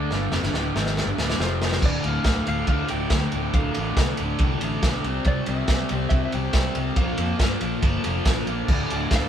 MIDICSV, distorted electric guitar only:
0, 0, Header, 1, 2, 480
1, 0, Start_track
1, 0, Key_signature, -1, "minor"
1, 0, Tempo, 428878
1, 126, Time_signature, 4, 2, 24, 8
1, 10394, End_track
2, 0, Start_track
2, 0, Title_t, "Distorted electric guitar"
2, 0, Program_c, 0, 30
2, 0, Note_on_c, 0, 50, 96
2, 0, Note_on_c, 0, 57, 97
2, 0, Note_on_c, 0, 62, 107
2, 126, Note_off_c, 0, 50, 0
2, 132, Note_off_c, 0, 57, 0
2, 134, Note_off_c, 0, 62, 0
2, 134, Note_on_c, 0, 43, 96
2, 142, Note_on_c, 0, 50, 103
2, 146, Note_on_c, 0, 55, 110
2, 361, Note_off_c, 0, 43, 0
2, 366, Note_on_c, 0, 41, 101
2, 368, Note_off_c, 0, 50, 0
2, 370, Note_off_c, 0, 55, 0
2, 379, Note_on_c, 0, 48, 110
2, 480, Note_off_c, 0, 41, 0
2, 486, Note_off_c, 0, 48, 0
2, 502, Note_on_c, 0, 43, 94
2, 514, Note_on_c, 0, 50, 103
2, 608, Note_off_c, 0, 43, 0
2, 614, Note_off_c, 0, 50, 0
2, 619, Note_on_c, 0, 38, 98
2, 626, Note_on_c, 0, 45, 116
2, 632, Note_on_c, 0, 50, 118
2, 841, Note_off_c, 0, 38, 0
2, 845, Note_on_c, 0, 44, 86
2, 850, Note_off_c, 0, 45, 0
2, 853, Note_off_c, 0, 50, 0
2, 859, Note_on_c, 0, 51, 91
2, 866, Note_on_c, 0, 56, 91
2, 1199, Note_off_c, 0, 44, 0
2, 1204, Note_on_c, 0, 43, 101
2, 1208, Note_off_c, 0, 51, 0
2, 1211, Note_off_c, 0, 56, 0
2, 1216, Note_on_c, 0, 50, 110
2, 1320, Note_off_c, 0, 43, 0
2, 1326, Note_off_c, 0, 50, 0
2, 1331, Note_on_c, 0, 38, 103
2, 1346, Note_on_c, 0, 45, 96
2, 1351, Note_on_c, 0, 50, 120
2, 1562, Note_off_c, 0, 38, 0
2, 1566, Note_on_c, 0, 41, 99
2, 1568, Note_off_c, 0, 45, 0
2, 1573, Note_off_c, 0, 50, 0
2, 1573, Note_on_c, 0, 48, 97
2, 1582, Note_on_c, 0, 53, 114
2, 2041, Note_off_c, 0, 41, 0
2, 2045, Note_off_c, 0, 48, 0
2, 2049, Note_off_c, 0, 53, 0
2, 2055, Note_on_c, 0, 38, 102
2, 2057, Note_on_c, 0, 45, 107
2, 2078, Note_on_c, 0, 50, 110
2, 2283, Note_off_c, 0, 45, 0
2, 2286, Note_off_c, 0, 38, 0
2, 2291, Note_on_c, 0, 38, 96
2, 2296, Note_on_c, 0, 45, 113
2, 2308, Note_off_c, 0, 50, 0
2, 2313, Note_on_c, 0, 50, 109
2, 2520, Note_off_c, 0, 38, 0
2, 2524, Note_on_c, 0, 38, 97
2, 2526, Note_off_c, 0, 45, 0
2, 2539, Note_on_c, 0, 45, 110
2, 2540, Note_off_c, 0, 50, 0
2, 2545, Note_on_c, 0, 50, 104
2, 2745, Note_off_c, 0, 38, 0
2, 2756, Note_off_c, 0, 45, 0
2, 2758, Note_on_c, 0, 38, 79
2, 2769, Note_on_c, 0, 45, 79
2, 2773, Note_off_c, 0, 50, 0
2, 2786, Note_on_c, 0, 50, 98
2, 2983, Note_off_c, 0, 38, 0
2, 2995, Note_off_c, 0, 45, 0
2, 2996, Note_on_c, 0, 38, 107
2, 3002, Note_off_c, 0, 50, 0
2, 3009, Note_on_c, 0, 45, 112
2, 3015, Note_on_c, 0, 50, 119
2, 3230, Note_off_c, 0, 38, 0
2, 3240, Note_off_c, 0, 45, 0
2, 3243, Note_on_c, 0, 38, 97
2, 3254, Note_on_c, 0, 45, 98
2, 3255, Note_off_c, 0, 50, 0
2, 3269, Note_on_c, 0, 50, 108
2, 3489, Note_off_c, 0, 38, 0
2, 3495, Note_off_c, 0, 45, 0
2, 3503, Note_on_c, 0, 38, 98
2, 3504, Note_off_c, 0, 50, 0
2, 3508, Note_on_c, 0, 45, 113
2, 3517, Note_on_c, 0, 50, 118
2, 3732, Note_off_c, 0, 38, 0
2, 3746, Note_on_c, 0, 38, 84
2, 3749, Note_off_c, 0, 45, 0
2, 3749, Note_off_c, 0, 50, 0
2, 3762, Note_on_c, 0, 45, 86
2, 3762, Note_on_c, 0, 50, 94
2, 3979, Note_off_c, 0, 38, 0
2, 3985, Note_off_c, 0, 45, 0
2, 3992, Note_on_c, 0, 38, 106
2, 3998, Note_off_c, 0, 50, 0
2, 3998, Note_on_c, 0, 45, 123
2, 4011, Note_on_c, 0, 50, 108
2, 4215, Note_off_c, 0, 38, 0
2, 4226, Note_off_c, 0, 45, 0
2, 4229, Note_on_c, 0, 38, 90
2, 4236, Note_off_c, 0, 50, 0
2, 4239, Note_on_c, 0, 45, 99
2, 4249, Note_on_c, 0, 50, 121
2, 4449, Note_off_c, 0, 38, 0
2, 4461, Note_off_c, 0, 45, 0
2, 4461, Note_off_c, 0, 50, 0
2, 4462, Note_on_c, 0, 38, 108
2, 4474, Note_on_c, 0, 45, 115
2, 4474, Note_on_c, 0, 50, 109
2, 4701, Note_off_c, 0, 38, 0
2, 4715, Note_on_c, 0, 38, 83
2, 4722, Note_off_c, 0, 45, 0
2, 4725, Note_off_c, 0, 50, 0
2, 4736, Note_on_c, 0, 45, 85
2, 4740, Note_on_c, 0, 50, 95
2, 4933, Note_off_c, 0, 38, 0
2, 4945, Note_off_c, 0, 45, 0
2, 4947, Note_on_c, 0, 38, 107
2, 4954, Note_off_c, 0, 50, 0
2, 4959, Note_on_c, 0, 45, 114
2, 4968, Note_on_c, 0, 50, 113
2, 5168, Note_off_c, 0, 38, 0
2, 5174, Note_off_c, 0, 45, 0
2, 5182, Note_on_c, 0, 38, 95
2, 5183, Note_off_c, 0, 50, 0
2, 5187, Note_on_c, 0, 45, 102
2, 5196, Note_on_c, 0, 50, 103
2, 5414, Note_off_c, 0, 38, 0
2, 5421, Note_off_c, 0, 45, 0
2, 5427, Note_on_c, 0, 38, 119
2, 5434, Note_off_c, 0, 50, 0
2, 5434, Note_on_c, 0, 45, 108
2, 5447, Note_on_c, 0, 50, 113
2, 5643, Note_off_c, 0, 38, 0
2, 5646, Note_off_c, 0, 45, 0
2, 5653, Note_off_c, 0, 50, 0
2, 5668, Note_on_c, 0, 48, 91
2, 5670, Note_on_c, 0, 55, 116
2, 5677, Note_on_c, 0, 60, 122
2, 5884, Note_off_c, 0, 48, 0
2, 5896, Note_off_c, 0, 55, 0
2, 5898, Note_on_c, 0, 48, 113
2, 5905, Note_off_c, 0, 60, 0
2, 5910, Note_on_c, 0, 55, 111
2, 5918, Note_on_c, 0, 60, 115
2, 6121, Note_off_c, 0, 48, 0
2, 6128, Note_off_c, 0, 55, 0
2, 6134, Note_on_c, 0, 48, 104
2, 6142, Note_off_c, 0, 60, 0
2, 6142, Note_on_c, 0, 55, 96
2, 6155, Note_on_c, 0, 60, 108
2, 6367, Note_off_c, 0, 48, 0
2, 6370, Note_off_c, 0, 55, 0
2, 6377, Note_off_c, 0, 60, 0
2, 6380, Note_on_c, 0, 48, 101
2, 6383, Note_on_c, 0, 55, 105
2, 6391, Note_on_c, 0, 60, 105
2, 6601, Note_off_c, 0, 48, 0
2, 6614, Note_on_c, 0, 48, 93
2, 6615, Note_off_c, 0, 60, 0
2, 6617, Note_off_c, 0, 55, 0
2, 6629, Note_on_c, 0, 60, 95
2, 6631, Note_on_c, 0, 55, 99
2, 6849, Note_off_c, 0, 48, 0
2, 6862, Note_on_c, 0, 48, 111
2, 6865, Note_off_c, 0, 55, 0
2, 6870, Note_off_c, 0, 60, 0
2, 6878, Note_on_c, 0, 55, 111
2, 6883, Note_on_c, 0, 60, 116
2, 7093, Note_off_c, 0, 48, 0
2, 7106, Note_off_c, 0, 55, 0
2, 7106, Note_on_c, 0, 48, 92
2, 7119, Note_off_c, 0, 60, 0
2, 7120, Note_on_c, 0, 55, 109
2, 7132, Note_on_c, 0, 60, 111
2, 7311, Note_off_c, 0, 48, 0
2, 7323, Note_off_c, 0, 55, 0
2, 7324, Note_on_c, 0, 48, 103
2, 7330, Note_off_c, 0, 60, 0
2, 7337, Note_on_c, 0, 55, 107
2, 7344, Note_on_c, 0, 60, 122
2, 7567, Note_off_c, 0, 48, 0
2, 7574, Note_off_c, 0, 55, 0
2, 7580, Note_on_c, 0, 48, 81
2, 7588, Note_off_c, 0, 60, 0
2, 7588, Note_on_c, 0, 55, 96
2, 7601, Note_on_c, 0, 60, 107
2, 7799, Note_off_c, 0, 48, 0
2, 7803, Note_off_c, 0, 55, 0
2, 7809, Note_off_c, 0, 60, 0
2, 7819, Note_on_c, 0, 46, 100
2, 7838, Note_on_c, 0, 53, 121
2, 7844, Note_on_c, 0, 58, 120
2, 8041, Note_off_c, 0, 46, 0
2, 8055, Note_on_c, 0, 46, 95
2, 8062, Note_off_c, 0, 53, 0
2, 8065, Note_off_c, 0, 58, 0
2, 8066, Note_on_c, 0, 53, 90
2, 8078, Note_on_c, 0, 58, 108
2, 8270, Note_off_c, 0, 46, 0
2, 8284, Note_on_c, 0, 46, 105
2, 8285, Note_off_c, 0, 58, 0
2, 8293, Note_off_c, 0, 53, 0
2, 8297, Note_on_c, 0, 53, 107
2, 8298, Note_on_c, 0, 58, 103
2, 8519, Note_off_c, 0, 46, 0
2, 8532, Note_on_c, 0, 46, 89
2, 8534, Note_off_c, 0, 58, 0
2, 8536, Note_off_c, 0, 53, 0
2, 8541, Note_on_c, 0, 53, 86
2, 8547, Note_on_c, 0, 58, 89
2, 8752, Note_off_c, 0, 46, 0
2, 8765, Note_on_c, 0, 46, 99
2, 8766, Note_off_c, 0, 53, 0
2, 8771, Note_on_c, 0, 53, 112
2, 8776, Note_off_c, 0, 58, 0
2, 8790, Note_on_c, 0, 58, 107
2, 8996, Note_off_c, 0, 46, 0
2, 9010, Note_on_c, 0, 46, 100
2, 9016, Note_off_c, 0, 53, 0
2, 9020, Note_on_c, 0, 53, 95
2, 9023, Note_off_c, 0, 58, 0
2, 9036, Note_on_c, 0, 58, 103
2, 9247, Note_off_c, 0, 46, 0
2, 9259, Note_off_c, 0, 53, 0
2, 9261, Note_on_c, 0, 46, 95
2, 9264, Note_off_c, 0, 58, 0
2, 9264, Note_on_c, 0, 53, 110
2, 9277, Note_on_c, 0, 58, 121
2, 9480, Note_off_c, 0, 46, 0
2, 9493, Note_on_c, 0, 46, 94
2, 9502, Note_off_c, 0, 53, 0
2, 9502, Note_off_c, 0, 58, 0
2, 9507, Note_on_c, 0, 53, 91
2, 9516, Note_on_c, 0, 58, 92
2, 9715, Note_off_c, 0, 46, 0
2, 9726, Note_off_c, 0, 58, 0
2, 9738, Note_on_c, 0, 38, 93
2, 9742, Note_off_c, 0, 53, 0
2, 9746, Note_on_c, 0, 45, 122
2, 9759, Note_on_c, 0, 50, 116
2, 9974, Note_off_c, 0, 38, 0
2, 9979, Note_on_c, 0, 38, 99
2, 9980, Note_off_c, 0, 45, 0
2, 9993, Note_on_c, 0, 45, 101
2, 10002, Note_off_c, 0, 50, 0
2, 10006, Note_on_c, 0, 50, 104
2, 10212, Note_off_c, 0, 38, 0
2, 10216, Note_off_c, 0, 45, 0
2, 10217, Note_on_c, 0, 38, 95
2, 10229, Note_on_c, 0, 45, 107
2, 10230, Note_off_c, 0, 50, 0
2, 10235, Note_on_c, 0, 50, 115
2, 10394, Note_off_c, 0, 38, 0
2, 10394, Note_off_c, 0, 45, 0
2, 10394, Note_off_c, 0, 50, 0
2, 10394, End_track
0, 0, End_of_file